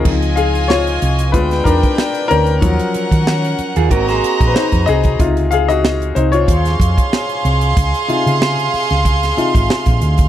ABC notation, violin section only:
X:1
M:4/4
L:1/8
Q:"Swing 16ths" 1/4=93
K:Db
V:1 name="Violin section"
[Fea]4 [=D=B=g]4 | [DBg]4 [Geb]4 | z4 [Afc']4- | [Afc']8 |]